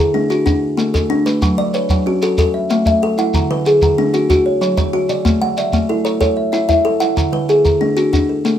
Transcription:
Already playing: kalimba D3 G#4 A4 B4
0.14 kalimba A3 D4
0.30 kalimba D4 F#4, shekere
0.46 kalimba D4 F#4, shekere
0.77 kalimba A3 A4, shekere
0.94 kalimba A3 A4, shekere
1.10 kalimba D4
1.26 kalimba A3 B4, shekere
1.42 kalimba F#3, shekere
1.58 kalimba F#3 D5
1.74 kalimba B4 C#5, shekere
1.90 kalimba F#3, shekere
2.06 kalimba C#4 F#4
2.22 kalimba F#4 A4, shekere
2.38 kalimba A4, shekere
2.54 kalimba E5
2.70 kalimba A3 E5, shekere
2.86 kalimba A3 E5, shekere
3.02 kalimba A4
3.18 kalimba E4 F#5, shekere
3.34 kalimba D3, shekere
3.51 kalimba D3 B4
3.66 kalimba G#4 A4, shekere
3.82 kalimba D3, shekere
3.98 kalimba A3 D4
4.14 kalimba D4 F#4, shekere
4.30 kalimba F#4, shekere
4.46 kalimba C#5
4.61 kalimba F#3 C#5, shekere
4.78 kalimba F#3 C#5, shekere
4.93 kalimba F#4
5.09 kalimba C#3 D5, shekere
5.25 kalimba A3, shekere
5.42 kalimba A3 F#5
5.57 kalimba D5 E5, shekere
5.73 kalimba A3, shekere
5.89 kalimba E4 A4
6.05 kalimba A4 C#5, shekere
6.21 kalimba A4 C#5, shekere
6.37 kalimba E5
6.52 kalimba E4 E5, shekere
6.69 kalimba E4 E5, shekere
6.85 kalimba A4
7.00 kalimba E4 F#5, shekere
7.17 kalimba D3, shekere
7.33 kalimba D3 B4
7.49 kalimba G#4 A4, shekere
7.65 kalimba D3, shekere
7.81 kalimba A3 D4
7.97 kalimba D4 F#4, shekere
8.13 kalimba D4 F#4, shekere
8.29 kalimba A4
8.45 kalimba A3 A4, shekere

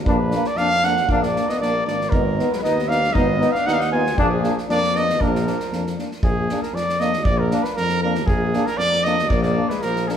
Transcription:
0.06 tuba A#1, euphonium A#3, trombone D4, trumpet B4, kick
0.31 euphonium A#3, trombone D4, snare
0.44 trumpet D5, snare
0.56 tuba F2, euphonium A#3, trombone D4, trumpet F5, snare
0.71 snare
0.83 euphonium A#3, trombone D4, trumpet F#5, snare
0.97 snare
1.08 tuba A#1, euphonium A#3, alto saxophone D4, trombone D4, trumpet F5, kick
1.23 alto saxophone A#3, trumpet D5, snare
1.34 euphonium A#3, trombone D4, snare
1.49 alto saxophone B3, trumpet D#5, snare
1.60 tuba A#1, alto saxophone A#3, euphonium A#3, trombone D4, trumpet D5, snare
1.86 tuba G#1, alto saxophone A#3, euphonium A#3, trombone D4, trumpet D5, snare
2.01 snare
2.10 tuba G#1, alto saxophone D#3, euphonium B3, trombone D#4, trumpet A#4, kick
2.38 euphonium B3, trombone D#4, snare
2.50 alto saxophone G#3, trumpet A#4 B4, snare
2.55 alto saxophone F#3 G#3, trumpet B4
2.63 tuba D#2, alto saxophone B3, euphonium B3, trombone D#4, trumpet D#5, snare
2.79 snare
2.88 euphonium B3, alto saxophone D4, trombone D#4, trumpet F5, snare
3.04 snare
3.13 tuba G#1, alto saxophone B3, euphonium B3, trombone D#4, trumpet D#5, kick
3.40 euphonium B3, trombone D#4, snare
3.52 alto saxophone D4, trumpet F5, snare
3.66 tuba D#2, euphonium B3, trombone D#4, alto saxophone D#4, trumpet F#5, snare
3.71 alto saxophone D4, trumpet F5
3.79 alto saxophone D#4, trumpet F#5, snare
3.92 euphonium B3, trombone D#4, alto saxophone F4, trumpet G#5
4.06 snare
4.18 tuba A#1, alto saxophone F3, euphonium A#3, trombone D4, trumpet G#4, kick
4.42 euphonium A#3, trombone D4, snare
4.58 snare
4.68 tuba F2, euphonium A#3, alto saxophone A#3, trombone D4, trumpet D5, snare
4.83 snare
4.94 euphonium A#3, alto saxophone B3, trombone D4, trumpet D#5, snare
5.09 snare
5.20 tuba A#1, alto saxophone F3, euphonium A#3, trombone D4, trumpet A#4, kick
5.35 snare
5.44 euphonium A#3, trombone D4, snare
5.60 snare
5.71 tuba F2, euphonium A#3, trombone D4, snare
5.87 snare
5.97 euphonium A#3, trombone D4, snare
6.11 snare
6.23 tuba A#1, trumpet G#4, kick
6.49 euphonium A#3, trombone D4, snare
6.62 trumpet A#4, snare
6.73 tuba F2, trumpet D5, snare
6.89 snare
7.00 euphonium A#3, trombone D4, trumpet D#5, snare
7.13 snare
7.24 tuba A#1, trumpet D5, kick
7.40 trumpet A#4
7.51 euphonium A#3, trombone D4, snare
7.63 trumpet B4, snare
7.76 tuba F2, trumpet A#4, snare
7.89 snare
8.03 euphonium A#3, trombone D4, trumpet A#4
8.15 snare
8.26 tuba A#1, trumpet G#4, kick
8.53 euphonium A#3, trombone D4, snare
8.66 trumpet A#4, snare
8.77 tuba F2, trumpet D5, snare
8.92 snare
9.04 euphonium A#3, trombone D4, trumpet D#5, snare
9.19 snare
9.29 tuba A#1, alto saxophone A#3, trumpet D5, kick
9.43 alto saxophone A#3, trumpet D5, snare
9.56 euphonium A#3, trombone D4
9.69 alto saxophone G#3, trumpet B4, snare
9.81 tuba A#1, alto saxophone F3, trumpet A#4, snare
9.96 snare
10.07 alto saxophone F3, euphonium A#3, trombone D4, trumpet G#4 A#4, snare

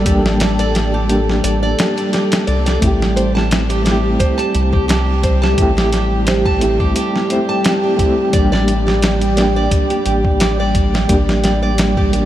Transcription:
Already playing: reed electric piano G3 A#3 D4 G4, analog synth pad G3 A4
0.02 reed electric piano G3 A#3, nylon-string guitar G4, kick, closed hi-hat
0.06 analog synth bass A1, reed electric piano D4
0.11 reed electric piano G4
0.26 snare
0.40 nylon-string guitar D5, snare, closed hi-hat
0.59 nylon-string guitar D5, closed hi-hat
0.75 snare, closed hi-hat
0.94 nylon-string guitar G4
1.07 reed electric piano G3 A#3 D4, nylon-string guitar G4, closed hi-hat
1.12 reed electric piano G4
1.29 snare
1.44 analog synth bass A1, nylon-string guitar D5, closed hi-hat
1.63 nylon-string guitar D5
1.79 snare, closed hi-hat
1.97 nylon-string guitar G4, closed hi-hat
2.13 nylon-string guitar G4, snare, closed hi-hat
2.32 snare, closed hi-hat
2.47 analog synth bass C2, nylon-string guitar D5, closed hi-hat
2.66 nylon-string guitar D5, snare, closed hi-hat
2.77 reed electric piano A3 C4, analog synth pad G4
2.81 analog synth bass A1, analog synth pad G3, reed electric piano E4, nylon-string guitar G4, kick, closed hi-hat
2.87 reed electric piano G4
3.02 snare
3.16 nylon-string guitar C5, closed hi-hat
3.35 nylon-string guitar A5, snare
3.51 snare, closed hi-hat
3.69 nylon-string guitar G4, closed hi-hat
3.82 reed electric piano A3 C4, nylon-string guitar G4
3.86 reed electric piano E4, snare, closed hi-hat
3.91 reed electric piano G4
4.19 nylon-string guitar C5, kick, closed hi-hat
4.38 nylon-string guitar A5, closed hi-hat
4.55 analog synth bass C2, closed hi-hat
4.73 nylon-string guitar G4, kick
4.88 nylon-string guitar G4, snare, closed hi-hat
5.23 nylon-string guitar C5, kick, closed hi-hat
5.42 nylon-string guitar A5, snare
5.53 reed electric piano A3 C4
5.58 analog synth bass A1, reed electric piano E4, kick, closed hi-hat
5.62 reed electric piano G4
5.77 nylon-string guitar G4, snare
5.93 nylon-string guitar G4, snare, closed hi-hat
6.27 nylon-string guitar C5, snare, closed hi-hat
6.45 nylon-string guitar A5, kick
6.59 reed electric piano A3 C4 E4, closed hi-hat
6.64 reed electric piano G4
6.80 nylon-string guitar G4, kick
6.96 nylon-string guitar G4, closed hi-hat
7.16 snare
7.28 reed electric piano A3 C4 E4, nylon-string guitar C5, closed hi-hat
7.33 reed electric piano G4
7.49 nylon-string guitar A5
7.64 snare, closed hi-hat
7.83 nylon-string guitar G4
7.97 reed electric piano A3 C4 E4, nylon-string guitar G4, kick, closed hi-hat
8.02 reed electric piano G4
8.30 analog synth bass A1, reed electric piano G3 A#3, nylon-string guitar D5, kick, closed hi-hat
8.36 reed electric piano D4 G4
8.52 nylon-string guitar D5, snare
8.68 closed hi-hat
8.87 nylon-string guitar G4, snare
9.02 nylon-string guitar G4, snare, closed hi-hat
9.21 closed hi-hat
9.33 reed electric piano G3 A#3, closed hi-hat
9.37 reed electric piano D4, nylon-string guitar D5, snare
9.43 reed electric piano G4
9.56 nylon-string guitar D5
9.71 kick, closed hi-hat
9.90 nylon-string guitar G4, closed hi-hat
10.06 analog synth bass A1, nylon-string guitar G4, closed hi-hat
10.25 kick
10.40 nylon-string guitar D5, snare, closed hi-hat
10.60 nylon-string guitar D5
10.75 kick, closed hi-hat
10.94 nylon-string guitar G4, snare
11.05 reed electric piano G3 A#3
11.09 analog synth bass A1, reed electric piano D4, nylon-string guitar G4, kick, closed hi-hat
11.14 reed electric piano G4
11.29 snare
11.44 nylon-string guitar D5, snare, closed hi-hat
11.62 nylon-string guitar D5
11.78 snare, closed hi-hat
11.97 nylon-string guitar G4, kick
12.11 reed electric piano G3 A#3 D4, nylon-string guitar G4, closed hi-hat
12.15 reed electric piano G4

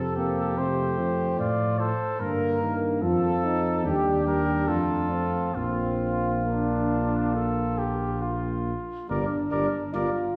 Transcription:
Already playing: tuba F2, trombone C3, french horn C4, trumpet A4
0.16 french horn A#3, trumpet G4
0.57 trombone C3, french horn A3, trumpet C5
0.99 trombone F3
1.39 tuba A2, trumpet F4 D5
1.79 trumpet A4 C5
2.20 tuba G2, trombone D3, french horn A#3, trumpet A#4
2.61 trombone D#3
3.02 tuba F2, trombone F3, french horn F4, trumpet A4
3.45 french horn D#4
3.85 tuba D#2, trombone G3, french horn D4, trumpet G4
4.26 trombone G3, trumpet A#4
4.68 tuba F2, trombone A3, trumpet F4 A4
5.11 french horn C4
5.55 tuba A#1, trombone A#3, french horn C4, trumpet F4
6.45 french horn A#3, trumpet D4
7.35 trumpet A4
7.78 trumpet G4
8.22 trumpet F4
9.09 tuba G1, trombone G3, french horn D4, trumpet A#4 D5
9.51 tuba G1, trombone G3, trumpet A#4 D5
9.94 tuba G1, trombone G3, french horn F4, trumpet A#4 D5

